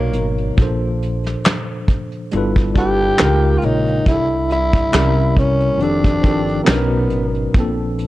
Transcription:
Already playing: B1 B2 F#3 A#3 D#4 A#4 C#5
0.13 G#1, closed hi-hat
0.38 closed hi-hat
0.57 A#1 A#2 F3 D4, kick, closed hi-hat
0.61 A4 C5
1.02 closed hi-hat
1.24 snare, closed hi-hat
1.44 snare, clap, closed hi-hat
1.88 kick, closed hi-hat
2.11 closed hi-hat
2.31 G1 G3 D4 E4 F4, closed hi-hat
2.36 A4 B4
2.56 kick
2.74 G3 D4 E4 F4 G4 A5, kick, closed hi-hat
2.79 A4 B4
3.18 C#2 C#3 G#3 D#4 G5, snare, clap, closed hi-hat
3.22 F4 A#4
3.44 F5
3.58 F4, closed hi-hat
3.63 A#1 D#4 C#5
3.87 closed hi-hat
4.05 C2 C3 G3 D4 E4, kick, closed hi-hat
4.10 E4 A4
4.50 E4, closed hi-hat
4.73 kick
4.91 C2 C3 G3 C#4, snare, clap, closed hi-hat
4.95 E4 A#4
5.36 C#4, kick, closed hi-hat
5.60 closed hi-hat
5.78 F1 D#3 F3 C4 D4, closed hi-hat
5.82 D4 G4 A4
6.04 kick
6.21 G1 D#3 F3 C4 D4, kick, closed hi-hat
6.25 G4 A4
6.49 closed hi-hat
6.64 B2 F#3 A#3 C#4, clap
6.68 B1 B3 D#4 A#4, snare, closed hi-hat
7.10 G#1, closed hi-hat
7.34 closed hi-hat
7.54 A#1 A#2 F3 C4, kick, closed hi-hat
7.59 D4 A4
7.99 closed hi-hat

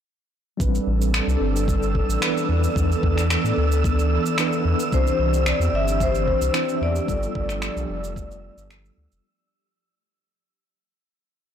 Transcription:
0.57 A1 G3 C4 D4 A4 D5 E6, kick, cabasa
0.62 B4
0.75 cabasa
0.87 A1
1.02 cabasa
1.14 finger snap, cabasa
1.27 C2, cabasa
1.40 G1
1.56 cabasa
1.68 kick, cabasa
1.83 cabasa
1.95 kick
2.09 A1, cabasa
2.21 E3 B3 D4 B4, finger snap, cabasa
2.37 cabasa
2.49 E2 E3 B3 D4 A4
2.64 cabasa
2.74 E2 E3 B3 D4, kick, cabasa
2.79 A4
2.92 cabasa
3.03 E2, kick
3.18 finger snap, cabasa
3.30 finger snap, cabasa
3.44 A2, cabasa
3.57 D2
3.72 cabasa
3.84 kick, cabasa
3.99 cabasa
4.26 cabasa
4.38 E3 B3 D4 B4, finger snap, cabasa
4.53 cabasa
4.65 E2
4.80 cabasa
4.91 C2 E3 C4 D4 G4 C5, kick, cabasa
4.95 C5
5.07 cabasa
5.19 C2
5.34 cabasa
5.46 D5, finger snap, cabasa
5.59 E2, cabasa
5.73 G1 E5
5.88 cabasa
6.00 C5, kick, cabasa
6.15 cabasa
6.28 kick
6.41 C2, cabasa
6.54 E3 C4 D4 C5, finger snap, cabasa
6.69 cabasa
6.76 E5
6.81 E2 D5
6.96 cabasa
7.06 G1 F3 G3 A3 B3 D4 F4, kick, cabasa
7.10 A4
7.23 cabasa
7.35 G1, kick
7.49 finger snap, cabasa
7.62 finger snap, cabasa
7.76 B1, cabasa
7.89 F1
8.04 cabasa
8.16 kick, cabasa
8.31 cabasa
8.57 G1, cabasa
8.71 finger snap, cabasa
8.85 cabasa
8.97 D2
9.12 F1, cabasa

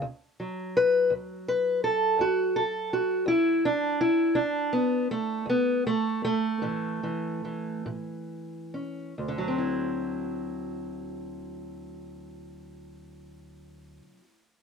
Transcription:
0.02 D2
0.40 F#3
0.77 B4
1.10 D2
1.48 B4
1.84 A4
2.19 D2 F#4
2.56 A4
2.93 F#4
3.26 D2 E4
3.65 D4
4.01 E4
4.35 D2 D4
4.73 B3
5.11 A3
5.46 D2 B3
5.87 A3
6.25 A3
6.62 A2 E3
7.03 E3
7.45 E3
7.86 A2
8.74 C#4
9.18 D2
9.28 D3
9.38 F#3
9.48 C4
9.58 E4

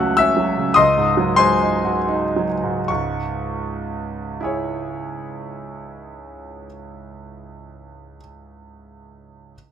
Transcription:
Already playing: C#2 C#3 F#3 A3 C#4 C#5 E5 F#5 A5 C#6 E6 F#6
0.00 F#4
0.17 C#4 E5 E6
0.37 F#3
0.57 C#3
0.74 C#2 D#5 C6 D#6
0.97 G#2
1.17 F#3
1.36 G#3 C5 G#5 C6
1.60 D#4
1.85 F#4
2.08 D#4
2.36 F#3
2.63 G#2
2.88 C#2 G#2 C#6
4.41 E4 G#4 C#5

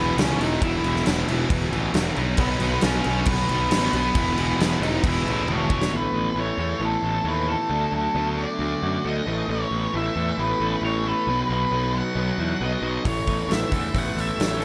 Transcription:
Already playing: E1 E2 B2 E3 F#3 B3 E4 B4
0.18 C#2 E2 B2 E3 C#4, snare, crash
0.23 C#5
0.38 E1 E2 B2 E3 F#3 B3 D#4 E4, crash
0.43 D#5
0.60 E1 E2 B2 E3 F#3 B3 E4, kick, crash
0.65 E5
0.83 E1 E2 B2 E3, crash
0.96 snare
1.06 E1 E2 B2 E3, snare, crash
1.28 E1 E2 B2 E3, crash
1.49 E1 E2 B2 E3, kick, crash
1.70 A1 E2 B2 E3, crash
1.76 E3
1.93 E1 E2 B2 E3, snare, crash
1.97 E2 B2
2.15 B1 B2 D#3 F#3 B3 D#4, crash
2.37 B1 B2 F#3 B3 B4, kick, crash
2.60 B1 B2 F#3 B3, crash
2.81 B1 B2 F#3 B3 C#4 C#5, snare, crash
3.04 B1 B2 F#3 B3, crash
3.26 B1 B2 F#3 B3 B4, kick, crash
3.49 B1 B2 F#3 B3, crash
3.69 A1 B2 D#3 F#3 B3 D#4, snare, crash
3.73 B2 F#3 B3
3.93 B1 B2 F#3 B3 B4, crash
4.14 E1 E2 B2 E3 G#3 B3 E4, kick, crash
4.36 E1 E2 B2 E3, crash
4.57 E1 E2 B2, crash
4.62 E3, snare
4.80 E1 E2 B2 E3 D#4 D#5, crash
5.03 E1 E2 B2 E3 E4 E5, kick, crash
5.24 A1 E2 B2 E3, crash
5.46 E1 E2 B2 E3, high tom
5.51 C#5
5.70 E1 E2 B2 E3 G#3 B3 E4, kick
5.82 snare
5.91 A1 A2 E3 A3
5.95 B4
6.13 A1 B3
6.35 A1 A2 E3 A3 E4
6.40 C#5
6.58 E2 A2 E3 A3 A4
6.80 A1 A2 E3 A3 B3
6.85 A4
7.03 A1 A4
7.24 D#2 A2 E3 A3 C#5
7.28 B4
7.48 A2 E3 A3 A4
7.70 D2 D3 A3 D4
7.92 D2 F#3 A4
8.15 D2 D3 A3 B3 D4
8.37 D3 A3 D4 F#4 D5
8.59 D2 D3 F#3 A3 D4
8.82 F#2 F#4
9.05 D2 D3 A3 D4 A4 D#5
9.27 A1 A2 E3 A3
9.48 A1 A2 E3 A3 C#5
9.71 A1 B3
9.94 A1 A2 E3 A3 E4 E5
10.15 E2 A2 E3 A3 A4
10.38 A1 A2 E3 A3 B3 B4
10.60 A1 A4
10.82 A1 A2 E3 A3 C#5
11.04 A2 E3 A3 A4 B4
11.27 B1 B2 F#3 B3
11.49 B1 B3 B4
11.71 B1 B2 F#3 B3 D#4
11.94 B2 F#3 B3 F#4 F#5
12.15 B1 B2 F#3 B3
12.38 E2 F#4
12.60 B1 B2 F#3 B3 B4 D#5
12.81 B1 B2 F#3 B3 F#4
13.04 A1 A2 E3 A3 C#5, kick, open hi-hat
13.27 A1 B3, kick, open hi-hat
13.48 A1 A2 E3 A3 E4, open hi-hat
13.52 E5, snare
13.72 E2 A2 E3 A3 A4, kick, open hi-hat
13.94 A1 A2 E3 A3 B3, kick, open hi-hat
13.98 F#5
14.15 A1 A4, open hi-hat
14.20 E5
14.38 A1 A2 E3 A3 C#5, snare, open hi-hat
14.60 A2 E3 A4, open hi-hat

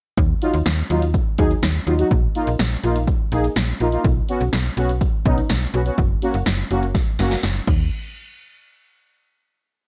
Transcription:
0.18 D#2, kick, closed hi-hat
0.42 F#3 D#4 F4, closed hi-hat
0.54 D#2, closed hi-hat
0.66 D#2, snare, closed hi-hat
0.90 D#2 F#3 D#4 F4, closed hi-hat
1.02 closed hi-hat
1.14 kick, closed hi-hat
1.38 D#2 F#3 D#4 G#4, kick, closed hi-hat
1.51 closed hi-hat
1.63 D#2, snare, closed hi-hat
1.87 D#2 F#3 D#4 F4, closed hi-hat
1.99 F#3 D#4 F#4, closed hi-hat
2.11 A#1, kick, closed hi-hat
2.35 A#3 D#4 F4, closed hi-hat
2.47 A#1, closed hi-hat
2.59 A#1, snare, closed hi-hat
2.84 A#1 A#3 D#4 F4, closed hi-hat
2.96 closed hi-hat
3.07 kick, closed hi-hat
3.32 A#1 A#3 D#4 G#4, closed hi-hat
3.44 closed hi-hat
3.56 A#1, snare, closed hi-hat
3.80 A#1 A#3 D#4 F4, closed hi-hat
3.92 A#3 D#4 F4, closed hi-hat
4.04 B1, kick, closed hi-hat
4.29 B3 C#4 F#4, closed hi-hat
4.41 B1, closed hi-hat
4.53 B1, snare, closed hi-hat
4.77 B1 B3 C#4 F#4, closed hi-hat
4.89 closed hi-hat
5.01 kick, closed hi-hat
5.25 B1 B3 C#4 D#4, kick, closed hi-hat
5.38 closed hi-hat
5.49 B1, snare, closed hi-hat
5.74 B1 B3 C#4 F#4, closed hi-hat
5.86 B3 C#4 F#4, closed hi-hat
5.98 F#1, kick, closed hi-hat
6.22 A#3 C#4 F#4, closed hi-hat
6.34 F#1, closed hi-hat
6.46 F#1, snare, closed hi-hat
6.71 F#1 A#3 C#4 F#4, closed hi-hat
6.83 closed hi-hat
6.95 kick, snare, closed hi-hat
7.19 F#1 A#3 C#4 F#4, snare, closed hi-hat
7.31 snare, closed hi-hat
7.43 F#1, snare, closed hi-hat
7.67 D#2, kick, crash

